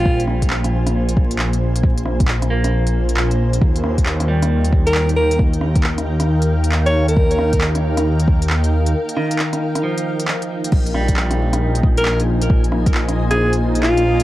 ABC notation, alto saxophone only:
X:1
M:4/4
L:1/16
Q:"Swing 16ths" 1/4=135
K:Ebmix
V:1 name="Alto saxophone"
F2 z12 z2 | z16 | z8 z3 B2 z B2 | z12 z d2 B- |
B4- B z8 z3 | z16 | z8 z3 B2 z3 | z6 z A2 z3 F4 |]